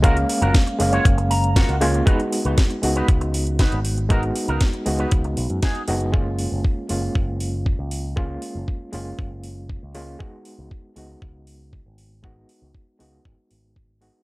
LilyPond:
<<
  \new Staff \with { instrumentName = "Clean electric guitar" } { \time 4/4 \key fis \major \tempo 4 = 118 <eis' fis' ais'>16 r8 <eis' fis' ais'>16 r8. <eis' fis' cis''>16 r8 ais''8 <eis' fis' ais' fis''>8 cis''8 | <dis' fis' b'>16 r8 <dis' fis' b'>16 r8. <dis' fis' b'>16 r4 <dis' fis' b'>8 r8 | <dis' fis' ais'>16 r8 <dis' fis' ais'>16 r8. <dis' fis' b'>16 r4 <dis' fis' gis'>8 r8 | r1 |
r1 | r1 | r1 | }
  \new Staff \with { instrumentName = "Reed electric piano" } { \time 4/4 \key fis \major <gis ais cis' eis''>4. <gis ais cis' eis''>2 <gis ais cis' eis'>8 | <gis b dis' fis'>4. <gis b dis' fis'>2~ <gis b dis' fis'>8 | <gis b dis' fis'>4. <gis b dis' fis'>2 <gis b dis' fis'>8 | <gis ais cis' eis'>4. <gis ais cis' eis'>2~ <gis ais cis' eis'>8 |
<gis ais cis' eis'>4. <gis ais cis' eis'>2 <gis ais cis' eis'>8 | <gis b dis' fis'>4. <gis b dis' fis'>2~ <gis b dis' fis'>8 | <gis b dis' fis'>4. <gis b dis' fis'>2 <gis b dis' fis'>8 | }
  \new Staff \with { instrumentName = "Picked electric bass" } { \clef bass \time 4/4 \key fis \major cis,8 r16 fis,,16 r8 fis,,16 r16 fis,,4~ fis,,16 cis,8. | r8. cis,16 r8 cis,16 r16 cis,4~ cis,16 gis,,8.~ | gis,,8 r16 cis,16 r8 cis,16 r16 cis,8 b,,16 fis,16 r8 fis,,8~ | fis,,8. fis,,16 r8 fis,,16 r16 fis,,4~ fis,,16 cis,8.~ |
cis,8 r16 fis,,16 r8 fis,,16 r16 fis,,4~ fis,,16 cis,8. | r8. cis,16 r8 cis,16 r16 cis,4~ cis,16 gis,,8.~ | gis,,8 r16 cis,16 r8 cis,16 r16 gis,,16 r16 gis,,4~ gis,,16 r16 | }
  \new DrumStaff \with { instrumentName = "Drums" } \drummode { \time 4/4 <hh bd>16 hh16 hho16 hh16 <hh bd sn>16 hh16 hho16 hh16 <hh bd>16 hh16 hho16 hh16 <hh bd sn>16 hh16 hho16 hh16 | <hh bd>16 hh16 hho16 hh16 <hh bd sn>16 hh16 hho16 hh16 <hh bd>16 hh16 hho16 hh16 <hh bd sn>16 hh16 hho16 hh16 | <hh bd>16 hh16 hho16 hh16 <hh bd sn>16 hh16 hho16 hh16 <hh bd>16 hh16 hho16 hh16 <hh bd sn>16 hh16 hho16 hh16 | bd8 hho8 bd8 hho8 bd8 hho8 bd8 hho8 |
bd8 hho8 bd8 hho8 bd8 hho8 bd8 hho8 | bd8 hho8 bd8 hho8 bd8 hho8 bd8 hho8 | bd8 hho8 bd8 hho8 bd8 hho8 bd8 hho8 | }
>>